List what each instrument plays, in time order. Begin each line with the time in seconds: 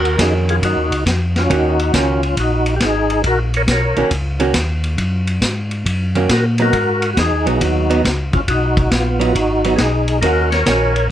Already playing: tonewheel organ D#2 F#4 A#4
0.05 ride
0.18 tonewheel organ F2 D#4 G#4, hollow-body jazz guitar D#3 A#3 C#4 F#4, kick, snare, hi-hat pedal, ride
0.49 tonewheel organ F4 G#4, ride
0.62 tonewheel organ F#2 D#4 F#4, kick, ride
0.76 tonewheel organ D#2
0.91 tonewheel organ C#2, ride
1.06 tonewheel organ F2, kick, snare, hi-hat pedal, ride
1.36 tonewheel organ C#4 F4, snare, ride
1.50 tonewheel organ D#2 D#4 F#4, hollow-body jazz guitar D#3 A#3 C#4 F#4, kick, ride
1.79 ride
1.93 tonewheel organ C#2 C#4 F4, hollow-body jazz guitar D#3 A#3 C#4 F#4, kick, snare, hi-hat pedal, ride
2.23 ride
2.37 tonewheel organ A#1 D#4 F#4, kick, ride
2.66 ride
2.76 tonewheel organ G4, snare, hi-hat pedal, ride
2.81 tonewheel organ G#1 D#4 G#4, kick
3.10 ride
3.24 tonewheel organ A#1 F#4 A#4, kick, ride
3.54 tonewheel organ A#4 C#5, ride
3.67 tonewheel organ B1 A#4, kick, snare, hi-hat pedal, ride
3.72 tonewheel organ C#5
3.96 tonewheel organ B1, hollow-body jazz guitar D#3 A#3 C#4 F#4, ride
4.11 tonewheel organ C#2, kick, ride
4.40 hollow-body jazz guitar D#3 A#3 C#4 F#4, ride
4.54 tonewheel organ D#2, kick, snare, hi-hat pedal, ride
4.84 ride
4.98 tonewheel organ F#2, kick, ride
5.27 ride
5.42 tonewheel organ G#2, kick, snare, hi-hat pedal, ride
5.71 ride
5.86 tonewheel organ F#2, kick, ride
6.15 hollow-body jazz guitar D#3 A#3 C#4 F#4, ride
6.29 tonewheel organ A#2 F#4 A#4, kick, snare, hi-hat pedal, ride
6.58 hollow-body jazz guitar F#3 B3 D#4, ride
6.62 tonewheel organ F#4 A#4
6.73 tonewheel organ G#2, kick, ride
7.02 ride
7.13 tonewheel organ E2 F#4, kick, snare, hi-hat pedal, ride
7.18 tonewheel organ D#4 G#4
7.32 tonewheel organ D#2
7.46 tonewheel organ B1, hollow-body jazz guitar F#3 B3 D#4, ride
7.60 tonewheel organ D#2 D#4 F#4, kick, ride
7.90 hollow-body jazz guitar F#3 B3 D#4, ride
8.05 tonewheel organ C#2, kick, snare, hi-hat pedal, ride
8.33 tonewheel organ C#2 C#4 F4, kick, ride
8.48 tonewheel organ B1 D#4 F#4, kick, ride
8.77 kick, ride
8.90 tonewheel organ A#1 B3 F4, kick, snare, hi-hat pedal, ride
9.20 hollow-body jazz guitar F#3 B3 D#4, ride
9.33 tonewheel organ G#1 D#4 F#4, kick, ride
9.64 hollow-body jazz guitar F#3 B3 D#4, ride
9.76 tonewheel organ B1 D#4 G#4, kick, snare, hi-hat pedal, ride
10.08 ride
10.21 tonewheel organ D#2 F#4 A#4, hollow-body jazz guitar D#3 A#3 C#4 F#4, kick, ride
10.51 tonewheel organ A#4 C#5, snare, ride
10.66 tonewheel organ A#1 A#4 C#5, hollow-body jazz guitar D#3 A#3 C#4 F#4, kick, snare, hi-hat pedal, ride
10.96 ride